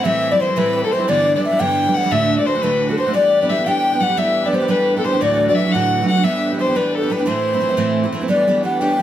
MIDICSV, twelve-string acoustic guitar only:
0, 0, Header, 1, 2, 480
1, 0, Start_track
1, 0, Tempo, 344037
1, 53, Time_signature, 6, 3, 24, 8
1, 12587, End_track
2, 0, Start_track
2, 0, Title_t, "Twelve-string acoustic guitar"
2, 0, Program_c, 0, 25
2, 61, Note_on_c, 0, 45, 66
2, 62, Note_on_c, 0, 52, 65
2, 74, Note_on_c, 0, 55, 66
2, 74, Note_on_c, 0, 60, 89
2, 83, Note_on_c, 0, 64, 68
2, 418, Note_off_c, 0, 64, 0
2, 431, Note_off_c, 0, 60, 0
2, 435, Note_on_c, 0, 64, 46
2, 439, Note_off_c, 0, 45, 0
2, 439, Note_off_c, 0, 52, 0
2, 445, Note_off_c, 0, 55, 0
2, 447, Note_on_c, 0, 60, 39
2, 464, Note_on_c, 0, 55, 40
2, 548, Note_off_c, 0, 64, 0
2, 552, Note_off_c, 0, 55, 0
2, 555, Note_off_c, 0, 60, 0
2, 555, Note_on_c, 0, 52, 51
2, 569, Note_on_c, 0, 55, 43
2, 579, Note_on_c, 0, 60, 53
2, 588, Note_on_c, 0, 64, 59
2, 638, Note_off_c, 0, 64, 0
2, 655, Note_on_c, 0, 64, 43
2, 660, Note_off_c, 0, 60, 0
2, 665, Note_off_c, 0, 52, 0
2, 672, Note_off_c, 0, 55, 0
2, 677, Note_on_c, 0, 60, 42
2, 696, Note_on_c, 0, 55, 37
2, 772, Note_off_c, 0, 64, 0
2, 777, Note_off_c, 0, 55, 0
2, 780, Note_on_c, 0, 45, 61
2, 783, Note_off_c, 0, 60, 0
2, 790, Note_on_c, 0, 52, 75
2, 793, Note_on_c, 0, 55, 61
2, 801, Note_on_c, 0, 60, 64
2, 802, Note_on_c, 0, 64, 72
2, 1142, Note_off_c, 0, 64, 0
2, 1155, Note_off_c, 0, 60, 0
2, 1159, Note_off_c, 0, 45, 0
2, 1159, Note_on_c, 0, 64, 46
2, 1164, Note_off_c, 0, 52, 0
2, 1166, Note_off_c, 0, 55, 0
2, 1172, Note_on_c, 0, 60, 44
2, 1187, Note_on_c, 0, 55, 41
2, 1272, Note_off_c, 0, 64, 0
2, 1274, Note_off_c, 0, 55, 0
2, 1278, Note_off_c, 0, 60, 0
2, 1282, Note_on_c, 0, 52, 49
2, 1290, Note_on_c, 0, 55, 55
2, 1303, Note_on_c, 0, 60, 58
2, 1316, Note_on_c, 0, 64, 65
2, 1364, Note_off_c, 0, 64, 0
2, 1381, Note_on_c, 0, 64, 50
2, 1382, Note_off_c, 0, 60, 0
2, 1390, Note_off_c, 0, 52, 0
2, 1394, Note_off_c, 0, 55, 0
2, 1399, Note_on_c, 0, 60, 41
2, 1418, Note_on_c, 0, 55, 41
2, 1496, Note_off_c, 0, 64, 0
2, 1498, Note_off_c, 0, 55, 0
2, 1504, Note_on_c, 0, 43, 61
2, 1505, Note_off_c, 0, 60, 0
2, 1505, Note_on_c, 0, 50, 75
2, 1514, Note_on_c, 0, 52, 86
2, 1514, Note_on_c, 0, 55, 70
2, 1520, Note_on_c, 0, 59, 70
2, 1525, Note_on_c, 0, 62, 77
2, 1863, Note_off_c, 0, 62, 0
2, 1871, Note_off_c, 0, 59, 0
2, 1880, Note_on_c, 0, 62, 52
2, 1882, Note_off_c, 0, 43, 0
2, 1883, Note_off_c, 0, 50, 0
2, 1884, Note_off_c, 0, 55, 0
2, 1887, Note_off_c, 0, 52, 0
2, 1888, Note_on_c, 0, 59, 47
2, 1901, Note_on_c, 0, 55, 44
2, 1909, Note_on_c, 0, 52, 39
2, 1978, Note_off_c, 0, 52, 0
2, 1991, Note_off_c, 0, 55, 0
2, 1993, Note_off_c, 0, 62, 0
2, 1994, Note_on_c, 0, 52, 46
2, 1997, Note_off_c, 0, 59, 0
2, 2008, Note_on_c, 0, 55, 41
2, 2023, Note_on_c, 0, 59, 55
2, 2030, Note_on_c, 0, 62, 55
2, 2084, Note_off_c, 0, 62, 0
2, 2093, Note_off_c, 0, 59, 0
2, 2101, Note_on_c, 0, 62, 40
2, 2107, Note_off_c, 0, 52, 0
2, 2107, Note_off_c, 0, 55, 0
2, 2110, Note_on_c, 0, 59, 38
2, 2124, Note_on_c, 0, 55, 43
2, 2131, Note_on_c, 0, 52, 35
2, 2213, Note_off_c, 0, 52, 0
2, 2213, Note_on_c, 0, 43, 69
2, 2216, Note_off_c, 0, 59, 0
2, 2217, Note_off_c, 0, 62, 0
2, 2218, Note_off_c, 0, 55, 0
2, 2223, Note_on_c, 0, 50, 64
2, 2229, Note_on_c, 0, 52, 61
2, 2233, Note_on_c, 0, 59, 77
2, 2235, Note_on_c, 0, 55, 72
2, 2242, Note_on_c, 0, 62, 80
2, 2582, Note_off_c, 0, 62, 0
2, 2596, Note_off_c, 0, 59, 0
2, 2597, Note_off_c, 0, 43, 0
2, 2598, Note_on_c, 0, 62, 47
2, 2602, Note_off_c, 0, 50, 0
2, 2605, Note_off_c, 0, 52, 0
2, 2608, Note_off_c, 0, 55, 0
2, 2613, Note_on_c, 0, 59, 48
2, 2630, Note_on_c, 0, 55, 40
2, 2634, Note_on_c, 0, 52, 37
2, 2705, Note_off_c, 0, 52, 0
2, 2713, Note_off_c, 0, 62, 0
2, 2716, Note_off_c, 0, 55, 0
2, 2720, Note_off_c, 0, 59, 0
2, 2721, Note_on_c, 0, 52, 56
2, 2733, Note_on_c, 0, 55, 58
2, 2742, Note_on_c, 0, 59, 57
2, 2754, Note_on_c, 0, 62, 64
2, 2802, Note_off_c, 0, 62, 0
2, 2817, Note_off_c, 0, 59, 0
2, 2818, Note_on_c, 0, 62, 42
2, 2831, Note_off_c, 0, 52, 0
2, 2834, Note_on_c, 0, 59, 45
2, 2837, Note_off_c, 0, 55, 0
2, 2851, Note_on_c, 0, 55, 49
2, 2855, Note_on_c, 0, 52, 45
2, 2936, Note_off_c, 0, 62, 0
2, 2941, Note_on_c, 0, 45, 78
2, 2943, Note_on_c, 0, 38, 73
2, 2944, Note_off_c, 0, 59, 0
2, 2947, Note_off_c, 0, 52, 0
2, 2950, Note_off_c, 0, 55, 0
2, 2952, Note_on_c, 0, 50, 73
2, 2955, Note_on_c, 0, 57, 78
2, 2960, Note_on_c, 0, 62, 72
2, 2960, Note_on_c, 0, 66, 71
2, 3297, Note_off_c, 0, 66, 0
2, 3305, Note_off_c, 0, 62, 0
2, 3313, Note_on_c, 0, 66, 53
2, 3317, Note_off_c, 0, 57, 0
2, 3322, Note_off_c, 0, 45, 0
2, 3322, Note_on_c, 0, 62, 41
2, 3323, Note_off_c, 0, 38, 0
2, 3324, Note_off_c, 0, 50, 0
2, 3334, Note_on_c, 0, 57, 48
2, 3341, Note_on_c, 0, 50, 42
2, 3414, Note_off_c, 0, 50, 0
2, 3429, Note_off_c, 0, 57, 0
2, 3431, Note_off_c, 0, 66, 0
2, 3431, Note_on_c, 0, 50, 43
2, 3435, Note_off_c, 0, 62, 0
2, 3446, Note_on_c, 0, 57, 51
2, 3456, Note_on_c, 0, 62, 53
2, 3461, Note_on_c, 0, 66, 65
2, 3536, Note_off_c, 0, 66, 0
2, 3543, Note_off_c, 0, 62, 0
2, 3546, Note_off_c, 0, 50, 0
2, 3553, Note_on_c, 0, 66, 44
2, 3554, Note_off_c, 0, 57, 0
2, 3559, Note_on_c, 0, 62, 36
2, 3570, Note_on_c, 0, 57, 42
2, 3584, Note_on_c, 0, 50, 31
2, 3654, Note_off_c, 0, 50, 0
2, 3661, Note_on_c, 0, 38, 76
2, 3662, Note_off_c, 0, 62, 0
2, 3664, Note_off_c, 0, 57, 0
2, 3664, Note_off_c, 0, 66, 0
2, 3669, Note_on_c, 0, 45, 76
2, 3670, Note_on_c, 0, 50, 64
2, 3679, Note_on_c, 0, 62, 72
2, 3681, Note_on_c, 0, 57, 68
2, 3684, Note_on_c, 0, 66, 69
2, 4012, Note_off_c, 0, 66, 0
2, 4023, Note_off_c, 0, 62, 0
2, 4029, Note_on_c, 0, 66, 52
2, 4034, Note_off_c, 0, 57, 0
2, 4040, Note_on_c, 0, 62, 45
2, 4042, Note_off_c, 0, 38, 0
2, 4046, Note_off_c, 0, 45, 0
2, 4047, Note_off_c, 0, 50, 0
2, 4051, Note_on_c, 0, 57, 39
2, 4062, Note_on_c, 0, 50, 43
2, 4133, Note_off_c, 0, 50, 0
2, 4142, Note_off_c, 0, 57, 0
2, 4149, Note_off_c, 0, 66, 0
2, 4150, Note_on_c, 0, 50, 49
2, 4155, Note_off_c, 0, 62, 0
2, 4158, Note_on_c, 0, 57, 57
2, 4178, Note_on_c, 0, 62, 50
2, 4184, Note_on_c, 0, 66, 54
2, 4249, Note_off_c, 0, 66, 0
2, 4261, Note_off_c, 0, 62, 0
2, 4266, Note_on_c, 0, 66, 46
2, 4267, Note_off_c, 0, 50, 0
2, 4271, Note_off_c, 0, 57, 0
2, 4278, Note_on_c, 0, 62, 44
2, 4293, Note_on_c, 0, 57, 49
2, 4301, Note_on_c, 0, 50, 35
2, 4367, Note_off_c, 0, 50, 0
2, 4372, Note_off_c, 0, 62, 0
2, 4373, Note_on_c, 0, 55, 71
2, 4378, Note_off_c, 0, 57, 0
2, 4381, Note_off_c, 0, 66, 0
2, 4384, Note_on_c, 0, 59, 79
2, 4389, Note_on_c, 0, 62, 67
2, 4396, Note_on_c, 0, 67, 76
2, 4742, Note_off_c, 0, 67, 0
2, 4758, Note_off_c, 0, 55, 0
2, 4759, Note_off_c, 0, 62, 0
2, 4759, Note_on_c, 0, 67, 46
2, 4764, Note_off_c, 0, 59, 0
2, 4776, Note_on_c, 0, 62, 44
2, 4791, Note_on_c, 0, 59, 42
2, 4865, Note_off_c, 0, 59, 0
2, 4871, Note_on_c, 0, 55, 51
2, 4875, Note_off_c, 0, 67, 0
2, 4877, Note_off_c, 0, 62, 0
2, 4882, Note_on_c, 0, 59, 56
2, 4894, Note_on_c, 0, 62, 49
2, 4907, Note_on_c, 0, 67, 58
2, 4956, Note_off_c, 0, 67, 0
2, 4973, Note_on_c, 0, 67, 44
2, 4975, Note_off_c, 0, 62, 0
2, 4987, Note_off_c, 0, 55, 0
2, 4990, Note_off_c, 0, 59, 0
2, 4992, Note_on_c, 0, 62, 36
2, 5006, Note_on_c, 0, 59, 36
2, 5095, Note_off_c, 0, 67, 0
2, 5097, Note_off_c, 0, 59, 0
2, 5104, Note_off_c, 0, 62, 0
2, 5106, Note_on_c, 0, 55, 65
2, 5113, Note_on_c, 0, 59, 66
2, 5119, Note_on_c, 0, 62, 72
2, 5131, Note_on_c, 0, 67, 77
2, 5454, Note_off_c, 0, 67, 0
2, 5471, Note_on_c, 0, 67, 51
2, 5474, Note_off_c, 0, 62, 0
2, 5485, Note_off_c, 0, 55, 0
2, 5489, Note_off_c, 0, 59, 0
2, 5491, Note_on_c, 0, 62, 45
2, 5506, Note_on_c, 0, 59, 43
2, 5580, Note_off_c, 0, 59, 0
2, 5580, Note_on_c, 0, 55, 53
2, 5590, Note_off_c, 0, 62, 0
2, 5591, Note_off_c, 0, 67, 0
2, 5597, Note_on_c, 0, 59, 57
2, 5607, Note_on_c, 0, 62, 54
2, 5617, Note_on_c, 0, 67, 61
2, 5678, Note_off_c, 0, 67, 0
2, 5694, Note_off_c, 0, 62, 0
2, 5695, Note_on_c, 0, 67, 46
2, 5702, Note_off_c, 0, 55, 0
2, 5704, Note_off_c, 0, 59, 0
2, 5710, Note_on_c, 0, 62, 42
2, 5720, Note_on_c, 0, 59, 37
2, 5806, Note_off_c, 0, 59, 0
2, 5811, Note_off_c, 0, 62, 0
2, 5816, Note_off_c, 0, 67, 0
2, 5819, Note_on_c, 0, 55, 73
2, 5823, Note_on_c, 0, 59, 72
2, 5828, Note_on_c, 0, 62, 76
2, 5835, Note_on_c, 0, 67, 71
2, 6188, Note_off_c, 0, 67, 0
2, 6201, Note_off_c, 0, 55, 0
2, 6203, Note_off_c, 0, 59, 0
2, 6204, Note_on_c, 0, 67, 43
2, 6206, Note_off_c, 0, 62, 0
2, 6222, Note_on_c, 0, 62, 43
2, 6238, Note_on_c, 0, 59, 44
2, 6303, Note_off_c, 0, 59, 0
2, 6311, Note_on_c, 0, 55, 49
2, 6317, Note_off_c, 0, 67, 0
2, 6318, Note_off_c, 0, 62, 0
2, 6320, Note_on_c, 0, 59, 50
2, 6335, Note_on_c, 0, 62, 54
2, 6339, Note_on_c, 0, 67, 52
2, 6405, Note_off_c, 0, 67, 0
2, 6422, Note_on_c, 0, 67, 47
2, 6423, Note_off_c, 0, 62, 0
2, 6427, Note_off_c, 0, 55, 0
2, 6432, Note_off_c, 0, 59, 0
2, 6439, Note_on_c, 0, 62, 40
2, 6449, Note_on_c, 0, 59, 39
2, 6522, Note_off_c, 0, 59, 0
2, 6530, Note_off_c, 0, 62, 0
2, 6531, Note_on_c, 0, 55, 63
2, 6537, Note_off_c, 0, 67, 0
2, 6539, Note_on_c, 0, 59, 60
2, 6547, Note_on_c, 0, 62, 74
2, 6553, Note_on_c, 0, 67, 66
2, 6911, Note_off_c, 0, 67, 0
2, 6917, Note_off_c, 0, 55, 0
2, 6921, Note_off_c, 0, 59, 0
2, 6925, Note_off_c, 0, 62, 0
2, 6928, Note_on_c, 0, 67, 49
2, 6943, Note_on_c, 0, 62, 51
2, 6955, Note_on_c, 0, 59, 36
2, 7033, Note_off_c, 0, 59, 0
2, 7037, Note_on_c, 0, 55, 54
2, 7039, Note_off_c, 0, 67, 0
2, 7043, Note_off_c, 0, 62, 0
2, 7050, Note_on_c, 0, 59, 49
2, 7060, Note_on_c, 0, 62, 51
2, 7073, Note_on_c, 0, 67, 54
2, 7132, Note_off_c, 0, 67, 0
2, 7148, Note_on_c, 0, 67, 53
2, 7149, Note_off_c, 0, 62, 0
2, 7150, Note_off_c, 0, 55, 0
2, 7157, Note_off_c, 0, 59, 0
2, 7166, Note_on_c, 0, 62, 41
2, 7178, Note_on_c, 0, 59, 46
2, 7259, Note_off_c, 0, 62, 0
2, 7263, Note_off_c, 0, 67, 0
2, 7263, Note_on_c, 0, 38, 62
2, 7270, Note_off_c, 0, 59, 0
2, 7271, Note_on_c, 0, 45, 69
2, 7276, Note_on_c, 0, 62, 61
2, 7278, Note_on_c, 0, 54, 67
2, 7283, Note_on_c, 0, 57, 82
2, 7287, Note_on_c, 0, 66, 64
2, 7635, Note_off_c, 0, 66, 0
2, 7643, Note_off_c, 0, 38, 0
2, 7643, Note_off_c, 0, 57, 0
2, 7647, Note_off_c, 0, 45, 0
2, 7649, Note_off_c, 0, 62, 0
2, 7651, Note_off_c, 0, 54, 0
2, 7651, Note_on_c, 0, 66, 45
2, 7660, Note_on_c, 0, 57, 45
2, 7677, Note_on_c, 0, 62, 45
2, 7686, Note_on_c, 0, 54, 42
2, 7750, Note_off_c, 0, 54, 0
2, 7761, Note_off_c, 0, 62, 0
2, 7761, Note_off_c, 0, 66, 0
2, 7765, Note_off_c, 0, 57, 0
2, 7767, Note_on_c, 0, 54, 55
2, 7778, Note_on_c, 0, 62, 40
2, 7788, Note_on_c, 0, 57, 53
2, 7803, Note_on_c, 0, 66, 63
2, 7870, Note_off_c, 0, 66, 0
2, 7875, Note_off_c, 0, 54, 0
2, 7880, Note_off_c, 0, 62, 0
2, 7882, Note_off_c, 0, 57, 0
2, 7887, Note_on_c, 0, 66, 44
2, 7898, Note_on_c, 0, 57, 46
2, 7911, Note_on_c, 0, 62, 39
2, 7914, Note_on_c, 0, 54, 34
2, 7992, Note_off_c, 0, 66, 0
2, 7997, Note_off_c, 0, 57, 0
2, 8002, Note_off_c, 0, 54, 0
2, 8004, Note_off_c, 0, 62, 0
2, 8007, Note_on_c, 0, 38, 60
2, 8017, Note_on_c, 0, 45, 72
2, 8019, Note_on_c, 0, 54, 60
2, 8022, Note_on_c, 0, 62, 69
2, 8033, Note_on_c, 0, 57, 62
2, 8036, Note_on_c, 0, 66, 71
2, 8371, Note_off_c, 0, 66, 0
2, 8375, Note_off_c, 0, 38, 0
2, 8380, Note_off_c, 0, 45, 0
2, 8381, Note_off_c, 0, 54, 0
2, 8382, Note_off_c, 0, 62, 0
2, 8388, Note_off_c, 0, 57, 0
2, 8388, Note_on_c, 0, 66, 53
2, 8401, Note_on_c, 0, 57, 50
2, 8416, Note_on_c, 0, 62, 38
2, 8423, Note_on_c, 0, 54, 40
2, 8470, Note_off_c, 0, 54, 0
2, 8482, Note_off_c, 0, 62, 0
2, 8486, Note_on_c, 0, 54, 57
2, 8489, Note_off_c, 0, 66, 0
2, 8495, Note_off_c, 0, 57, 0
2, 8499, Note_on_c, 0, 62, 54
2, 8509, Note_on_c, 0, 57, 50
2, 8521, Note_on_c, 0, 66, 67
2, 8572, Note_off_c, 0, 66, 0
2, 8587, Note_off_c, 0, 57, 0
2, 8589, Note_on_c, 0, 66, 45
2, 8594, Note_off_c, 0, 54, 0
2, 8600, Note_off_c, 0, 62, 0
2, 8603, Note_on_c, 0, 57, 39
2, 8616, Note_on_c, 0, 62, 43
2, 8626, Note_on_c, 0, 54, 34
2, 8688, Note_off_c, 0, 54, 0
2, 8694, Note_on_c, 0, 55, 72
2, 8695, Note_off_c, 0, 62, 0
2, 8702, Note_off_c, 0, 66, 0
2, 8706, Note_off_c, 0, 57, 0
2, 8710, Note_on_c, 0, 59, 73
2, 8712, Note_on_c, 0, 62, 76
2, 8719, Note_on_c, 0, 67, 77
2, 9077, Note_off_c, 0, 67, 0
2, 9078, Note_off_c, 0, 55, 0
2, 9086, Note_off_c, 0, 59, 0
2, 9087, Note_off_c, 0, 62, 0
2, 9094, Note_on_c, 0, 67, 51
2, 9106, Note_on_c, 0, 62, 44
2, 9128, Note_on_c, 0, 59, 48
2, 9181, Note_off_c, 0, 59, 0
2, 9190, Note_on_c, 0, 55, 47
2, 9197, Note_off_c, 0, 62, 0
2, 9198, Note_on_c, 0, 59, 48
2, 9201, Note_off_c, 0, 67, 0
2, 9214, Note_on_c, 0, 62, 52
2, 9220, Note_on_c, 0, 67, 57
2, 9286, Note_off_c, 0, 67, 0
2, 9303, Note_on_c, 0, 67, 46
2, 9304, Note_off_c, 0, 62, 0
2, 9306, Note_off_c, 0, 55, 0
2, 9310, Note_off_c, 0, 59, 0
2, 9321, Note_on_c, 0, 62, 41
2, 9336, Note_on_c, 0, 59, 38
2, 9411, Note_off_c, 0, 59, 0
2, 9416, Note_off_c, 0, 62, 0
2, 9416, Note_on_c, 0, 55, 57
2, 9419, Note_off_c, 0, 67, 0
2, 9427, Note_on_c, 0, 59, 63
2, 9433, Note_on_c, 0, 62, 75
2, 9439, Note_on_c, 0, 67, 74
2, 9764, Note_off_c, 0, 67, 0
2, 9781, Note_on_c, 0, 67, 48
2, 9786, Note_off_c, 0, 62, 0
2, 9798, Note_off_c, 0, 55, 0
2, 9799, Note_off_c, 0, 59, 0
2, 9803, Note_on_c, 0, 62, 49
2, 9816, Note_on_c, 0, 59, 49
2, 9900, Note_off_c, 0, 59, 0
2, 9901, Note_on_c, 0, 55, 57
2, 9904, Note_off_c, 0, 67, 0
2, 9909, Note_off_c, 0, 62, 0
2, 9917, Note_on_c, 0, 59, 46
2, 9926, Note_on_c, 0, 62, 58
2, 9940, Note_on_c, 0, 67, 64
2, 10004, Note_off_c, 0, 67, 0
2, 10019, Note_off_c, 0, 62, 0
2, 10020, Note_off_c, 0, 55, 0
2, 10020, Note_on_c, 0, 67, 47
2, 10028, Note_off_c, 0, 59, 0
2, 10036, Note_on_c, 0, 62, 50
2, 10054, Note_on_c, 0, 59, 41
2, 10124, Note_on_c, 0, 45, 70
2, 10134, Note_off_c, 0, 59, 0
2, 10135, Note_on_c, 0, 52, 61
2, 10137, Note_off_c, 0, 67, 0
2, 10139, Note_off_c, 0, 62, 0
2, 10139, Note_on_c, 0, 60, 84
2, 10145, Note_on_c, 0, 57, 72
2, 10152, Note_on_c, 0, 64, 76
2, 10493, Note_off_c, 0, 64, 0
2, 10508, Note_off_c, 0, 57, 0
2, 10510, Note_on_c, 0, 64, 54
2, 10511, Note_off_c, 0, 45, 0
2, 10517, Note_off_c, 0, 52, 0
2, 10519, Note_off_c, 0, 60, 0
2, 10525, Note_on_c, 0, 57, 41
2, 10539, Note_on_c, 0, 60, 34
2, 10609, Note_off_c, 0, 60, 0
2, 10612, Note_on_c, 0, 52, 53
2, 10621, Note_off_c, 0, 57, 0
2, 10626, Note_on_c, 0, 60, 55
2, 10628, Note_off_c, 0, 64, 0
2, 10638, Note_on_c, 0, 57, 50
2, 10648, Note_on_c, 0, 64, 47
2, 10711, Note_off_c, 0, 64, 0
2, 10728, Note_on_c, 0, 64, 52
2, 10729, Note_off_c, 0, 57, 0
2, 10735, Note_off_c, 0, 52, 0
2, 10742, Note_off_c, 0, 60, 0
2, 10746, Note_on_c, 0, 57, 44
2, 10760, Note_on_c, 0, 60, 39
2, 10834, Note_off_c, 0, 60, 0
2, 10838, Note_off_c, 0, 57, 0
2, 10840, Note_off_c, 0, 64, 0
2, 10840, Note_on_c, 0, 45, 75
2, 10843, Note_on_c, 0, 52, 68
2, 10851, Note_on_c, 0, 60, 86
2, 10855, Note_on_c, 0, 57, 81
2, 10856, Note_on_c, 0, 64, 72
2, 11194, Note_off_c, 0, 64, 0
2, 11211, Note_on_c, 0, 64, 52
2, 11212, Note_off_c, 0, 57, 0
2, 11225, Note_off_c, 0, 60, 0
2, 11228, Note_off_c, 0, 45, 0
2, 11228, Note_on_c, 0, 57, 50
2, 11229, Note_off_c, 0, 52, 0
2, 11242, Note_on_c, 0, 60, 39
2, 11336, Note_on_c, 0, 52, 70
2, 11337, Note_off_c, 0, 60, 0
2, 11337, Note_off_c, 0, 64, 0
2, 11346, Note_off_c, 0, 57, 0
2, 11354, Note_on_c, 0, 60, 59
2, 11363, Note_on_c, 0, 57, 64
2, 11373, Note_on_c, 0, 64, 59
2, 11428, Note_off_c, 0, 64, 0
2, 11444, Note_off_c, 0, 57, 0
2, 11445, Note_on_c, 0, 64, 53
2, 11456, Note_off_c, 0, 52, 0
2, 11461, Note_on_c, 0, 57, 49
2, 11462, Note_off_c, 0, 60, 0
2, 11478, Note_on_c, 0, 60, 43
2, 11552, Note_on_c, 0, 55, 64
2, 11556, Note_off_c, 0, 60, 0
2, 11561, Note_on_c, 0, 59, 73
2, 11564, Note_off_c, 0, 57, 0
2, 11567, Note_off_c, 0, 64, 0
2, 11570, Note_on_c, 0, 62, 71
2, 11580, Note_on_c, 0, 67, 74
2, 11806, Note_off_c, 0, 55, 0
2, 11815, Note_off_c, 0, 59, 0
2, 11823, Note_on_c, 0, 55, 59
2, 11826, Note_off_c, 0, 62, 0
2, 11831, Note_on_c, 0, 59, 55
2, 11833, Note_off_c, 0, 67, 0
2, 11843, Note_on_c, 0, 62, 61
2, 11849, Note_on_c, 0, 67, 52
2, 12025, Note_off_c, 0, 55, 0
2, 12035, Note_off_c, 0, 59, 0
2, 12041, Note_on_c, 0, 55, 50
2, 12046, Note_off_c, 0, 62, 0
2, 12050, Note_off_c, 0, 67, 0
2, 12052, Note_on_c, 0, 59, 46
2, 12063, Note_on_c, 0, 62, 54
2, 12067, Note_on_c, 0, 67, 51
2, 12269, Note_off_c, 0, 55, 0
2, 12273, Note_off_c, 0, 59, 0
2, 12283, Note_off_c, 0, 62, 0
2, 12286, Note_on_c, 0, 55, 60
2, 12290, Note_off_c, 0, 67, 0
2, 12290, Note_on_c, 0, 59, 69
2, 12300, Note_on_c, 0, 62, 80
2, 12307, Note_on_c, 0, 67, 67
2, 12529, Note_off_c, 0, 55, 0
2, 12540, Note_off_c, 0, 59, 0
2, 12555, Note_off_c, 0, 62, 0
2, 12562, Note_off_c, 0, 67, 0
2, 12587, End_track
0, 0, End_of_file